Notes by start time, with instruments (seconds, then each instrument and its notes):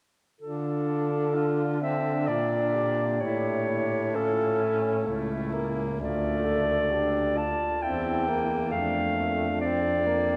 0.41 baritone saxophone D3, tenor saxophone D4, alto saxophone F4, clarinet A4
1.35 alto saxophone D4, tenor saxophone F4
1.81 tenor saxophone C4, clarinet E5
2.27 baritone saxophone A#2, tenor saxophone D4, alto saxophone F4, clarinet D5
2.74 alto saxophone G4
3.21 baritone saxophone A2, tenor saxophone E4, clarinet C#5
3.68 tenor saxophone E4
4.15 tenor saxophone C#4, alto saxophone F4, clarinet A4
4.61 alto saxophone E4
5.04 baritone saxophone C#2, tenor saxophone A3, alto saxophone E4
5.54 tenor saxophone A#3
5.99 baritone saxophone D2, tenor saxophone A3, alto saxophone F4, clarinet D5
6.45 alto saxophone A4
6.91 tenor saxophone D4, alto saxophone G4
7.36 alto saxophone F4, clarinet A5
7.82 baritone saxophone E2, tenor saxophone C4, alto saxophone E4, clarinet G5
8.29 tenor saxophone A#3
8.71 baritone saxophone F2, tenor saxophone A3, alto saxophone D4, clarinet F5
9.16 alto saxophone D4
9.61 tenor saxophone C4, clarinet D5
10.07 tenor saxophone A#3